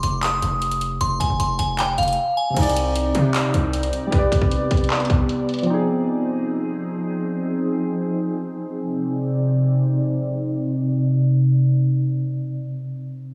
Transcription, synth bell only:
0.03 0.20 C6 medium
0.23 0.97 D#6 medium
1.01 1.18 C6 loud
1.20 1.37 G#5 medium
1.40 1.57 C6 medium
1.59 1.76 G#5 medium
1.79 1.96 G5 medium
1.98 2.35 F5 medium
2.37 2.54 G#5 medium

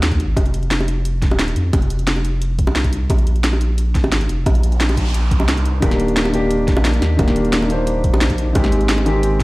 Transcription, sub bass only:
0.00 0.21 D#2 medium
0.20 0.35 G#1 loud
0.37 1.32 F1 medium
1.31 1.55 D#1 loud
1.56 1.72 F2 medium
1.73 2.66 F1 medium
2.67 3.08 C2 medium
3.10 4.05 A#1 loud
4.04 4.28 G#1 medium
4.29 4.45 F1 medium
4.46 5.42 A#1 loud
5.40 5.81 C2 loud
5.82 6.78 D#1 loud
6.77 7.01 A#1 loud
7.02 7.17 D#2 medium
7.19 8.12 D#1 loud
8.13 8.54 A#1 medium
8.55 9.43 G#1 loud

